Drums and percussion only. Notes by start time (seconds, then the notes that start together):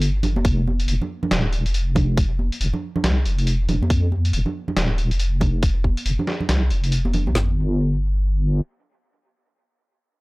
0.02 closed hi-hat
0.23 closed hi-hat, low conga
0.36 high conga
0.45 kick, closed hi-hat
0.68 high conga
0.80 closed hi-hat
0.88 closed hi-hat
1.02 low conga
1.23 low conga
1.31 snare, closed hi-hat
1.53 closed hi-hat
1.66 closed hi-hat
1.74 closed hi-hat
1.95 kick, closed hi-hat, low conga
2.17 kick, closed hi-hat
2.39 high conga
2.52 closed hi-hat
2.61 closed hi-hat
2.74 low conga
2.96 low conga
3.04 snare, closed hi-hat
3.25 closed hi-hat
3.39 closed hi-hat
3.47 closed hi-hat
3.69 closed hi-hat, low conga
3.82 high conga
3.90 kick, closed hi-hat
4.12 high conga
4.25 closed hi-hat
4.33 closed hi-hat
4.46 low conga
4.68 low conga
4.77 snare, closed hi-hat
4.98 closed hi-hat
5.11 closed hi-hat
5.20 closed hi-hat
5.41 kick, closed hi-hat, low conga
5.63 kick, closed hi-hat
5.84 kick, high conga
5.97 closed hi-hat
6.06 closed hi-hat
6.19 low conga
6.27 snare
6.41 low conga
6.49 snare, closed hi-hat
6.70 closed hi-hat
6.84 closed hi-hat
6.92 closed hi-hat
7.05 high conga
7.14 closed hi-hat, low conga
7.27 high conga
7.35 snare, floor tom